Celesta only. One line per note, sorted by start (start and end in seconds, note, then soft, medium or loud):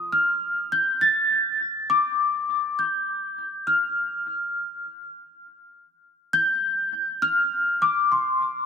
0.00 0.15 D#6 medium
0.12 0.73 F6 medium
0.72 1.02 G6 medium
1.01 1.63 A6 medium
1.90 2.81 D6 medium
2.79 3.70 G6 medium
3.67 5.11 F6 medium
6.33 7.25 G6 loud
7.22 7.83 F6 loud
7.82 8.12 D6 medium
8.12 8.66 C6 medium